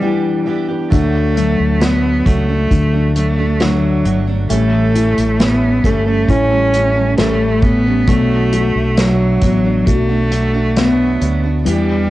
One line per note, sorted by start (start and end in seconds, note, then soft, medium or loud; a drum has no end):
0.00 0.02 E3 soft
0.00 0.45 E3 medium
0.00 0.89 E3 soft
0.00 0.43 G3 medium
0.00 0.45 B3 medium
0.00 0.46 D4 medium
0.00 0.47 G4 medium
0.46 0.69 E3 soft
0.46 0.69 B3 soft
0.46 0.68 D4 soft
0.46 0.67 G4 medium
0.68 0.91 B3 soft
0.68 0.90 D4 soft
0.68 0.91 G4 soft
0.90 1.55 D2 medium
0.90 1.36 D3 medium
0.90 1.34 F#3 medium
0.90 1.35 A3 medium
0.90 1.83 A3 medium
0.90 1.35 D4 medium
0.90 4.46 D4 soft
0.90 1.36 F#4 medium
0.90 kick medium
0.90 closed hi-hat medium
1.35 1.79 F#3 soft
1.35 3.12 F#3 soft
1.35 1.80 A3 soft
1.35 1.80 D4 soft
1.35 1.80 F#4 soft
1.35 closed hi-hat soft
1.60 2.22 D2 medium
1.80 2.25 D3 medium
1.80 2.24 F#3 medium
1.80 2.25 A3 medium
1.80 2.27 B3 medium
1.80 2.26 D4 medium
1.80 2.26 F#4 medium
1.80 snare medium
1.80 closed hi-hat medium
2.26 2.68 C#2 medium
2.26 2.48 F#3 soft
2.26 3.16 A3 medium
2.26 2.49 A3 soft
2.26 2.48 D4 soft
2.26 2.47 F#4 medium
2.26 kick medium
2.26 closed hi-hat medium
2.48 2.94 A3 soft
2.48 2.93 D4 soft
2.48 2.92 F#4 soft
2.71 4.01 D2 medium
2.71 3.59 D3 soft
2.71 kick medium
2.71 closed hi-hat medium
2.93 3.16 A3 soft
2.93 3.16 D4 soft
2.93 3.16 F#4 soft
3.16 3.38 F#3 soft
3.16 3.63 A3 medium
3.16 3.39 A3 soft
3.16 3.38 D4 soft
3.16 3.37 F#4 medium
3.16 closed hi-hat medium
3.38 3.60 A3 soft
3.38 3.61 D4 soft
3.38 3.60 F#4 soft
3.60 4.47 D3 soft
3.60 4.05 D3 medium
3.60 4.03 F#3 medium
3.60 4.28 F#3 medium
3.60 4.04 A3 medium
3.60 4.05 D4 medium
3.60 4.06 F#4 medium
3.60 snare medium
3.60 closed hi-hat medium
4.05 4.47 G1 medium
4.05 4.27 F#3 soft
4.05 4.28 A3 soft
4.05 4.27 D4 soft
4.05 4.26 F#4 soft
4.05 closed hi-hat soft
4.27 4.49 A3 soft
4.27 4.50 D4 soft
4.27 4.50 F#4 soft
4.49 5.13 A1 medium
4.49 4.94 A2 medium
4.49 4.94 E3 medium
4.49 4.93 G3 medium
4.49 5.83 A3 soft
4.49 4.94 A3 medium
4.49 5.42 A3 medium
4.49 4.94 C#4 medium
4.49 4.95 A4 medium
4.49 closed hi-hat medium
4.94 5.39 G3 soft
4.94 5.39 A3 soft
4.94 5.39 C#4 soft
4.94 6.27 E4 soft
4.94 5.39 A4 soft
4.94 closed hi-hat medium
5.18 5.81 A1 medium
5.18 closed hi-hat soft
5.39 5.84 A2 medium
5.39 5.84 E3 medium
5.39 5.83 G3 medium
5.39 5.83 A3 medium
5.39 5.87 B3 medium
5.39 5.84 C#4 medium
5.39 5.85 A4 medium
5.39 snare medium
5.39 closed hi-hat medium
5.84 6.26 G1 medium
5.84 6.06 G3 soft
5.84 6.06 A3 soft
5.84 7.17 A3 soft
5.84 6.07 A3 medium
5.84 6.06 C#4 soft
5.84 6.04 A4 medium
5.84 kick medium
5.84 closed hi-hat medium
6.06 6.52 G3 soft
6.06 6.51 A3 soft
6.06 6.31 A3 medium
6.06 6.50 C#4 soft
6.06 6.49 A4 soft
6.28 7.14 A1 medium
6.28 7.19 C#4 medium
6.28 8.04 E4 soft
6.28 kick medium
6.28 closed hi-hat medium
6.51 6.72 G3 soft
6.51 6.73 A3 soft
6.51 6.74 C#4 soft
6.51 6.73 A4 soft
6.73 6.96 G3 soft
6.73 6.96 A3 soft
6.73 6.95 C#4 soft
6.73 6.95 A4 medium
6.73 closed hi-hat soft
6.96 7.18 G3 soft
6.96 7.18 A3 soft
6.96 7.18 C#4 soft
6.96 7.18 A4 soft
7.18 8.04 A1 medium
7.18 7.63 A2 medium
7.18 7.63 E3 medium
7.18 7.62 G3 medium
7.18 8.05 A3 soft
7.18 7.63 A3 medium
7.18 7.64 A3 medium
7.18 7.64 C#4 medium
7.18 7.64 A4 medium
7.18 snare medium
7.18 closed hi-hat medium
7.62 7.86 G3 soft
7.62 7.86 A3 soft
7.62 8.09 B3 medium
7.62 7.86 C#4 medium
7.62 7.85 A4 medium
7.62 kick medium
7.62 closed hi-hat soft
7.86 8.08 G3 soft
7.86 8.08 A3 soft
7.86 8.08 C#4 soft
7.86 8.08 A4 soft
8.07 8.71 B1 medium
8.07 8.53 B2 medium
8.07 8.51 F#3 medium
8.07 8.99 A3 medium
8.07 8.52 A3 medium
8.07 9.41 B3 soft
8.07 8.52 D4 medium
8.07 8.53 F#4 medium
8.07 kick medium
8.07 closed hi-hat medium
8.52 8.96 F#3 soft
8.52 8.97 A3 soft
8.52 8.97 D4 soft
8.52 9.85 F#4 soft
8.52 8.98 F#4 soft
8.52 closed hi-hat medium
8.75 9.38 B1 medium
8.97 9.42 B2 medium
8.97 9.41 F#3 medium
8.97 9.88 F#3 medium
8.97 9.42 A3 medium
8.97 9.42 D4 medium
8.97 9.43 F#4 medium
8.97 snare medium
8.97 closed hi-hat medium
9.41 9.84 A1 medium
9.41 9.65 F#3 soft
9.41 9.65 A3 soft
9.41 10.75 B3 soft
9.41 9.64 D4 soft
9.41 9.62 F#4 soft
9.41 kick medium
9.41 closed hi-hat medium
9.64 10.10 A3 soft
9.64 10.09 D4 soft
9.64 10.07 F#4 soft
9.86 11.18 B1 medium
9.86 10.79 A3 medium
9.86 11.62 F#4 soft
9.86 kick medium
9.86 closed hi-hat medium
10.09 10.30 A3 soft
10.09 10.31 D4 soft
10.09 10.32 F#4 soft
10.31 10.54 F#3 soft
10.31 10.54 A3 soft
10.31 10.54 D4 soft
10.31 10.53 F#4 soft
10.31 closed hi-hat medium
10.54 10.76 A3 soft
10.54 10.76 D4 soft
10.54 10.76 F#4 soft
10.76 11.21 B2 medium
10.76 11.20 F#3 medium
10.76 11.20 A3 medium
10.76 11.63 B3 soft
10.76 11.45 B3 medium
10.76 11.21 D4 medium
10.76 11.21 F#4 medium
10.76 snare medium
10.76 closed hi-hat medium
11.21 11.63 D2 medium
11.21 11.44 F#3 soft
11.21 11.44 A3 soft
11.21 11.43 D4 soft
11.21 11.42 F#4 soft
11.21 closed hi-hat soft
11.43 11.66 A3 soft
11.43 11.66 D4 soft
11.43 11.66 F#4 soft
11.65 12.10 E2 medium
11.65 12.09 E3 medium
11.65 12.10 G3 medium
11.65 12.10 B3 medium
11.65 12.10 D4 medium
11.65 12.10 G4 medium
11.65 closed hi-hat medium